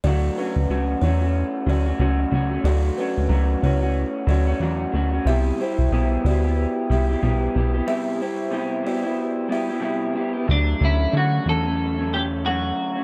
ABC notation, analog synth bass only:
X:1
M:4/4
L:1/16
Q:"Swing 16ths" 1/4=92
K:D
V:1 name="Analog synth bass" clef=bass
D,,2 z D,, C,,2 E,,3 z D,,2 C,,2 C,,2 | D,,2 z D,, C,,2 C,,3 z D,,2 E,,2 D,,2 | =C,,2 z C,, B,,,2 D,,3 z C,,2 B,,,2 B,,,2 | z16 |
D,,2 D,,2 D,2 E,,8 z2 |]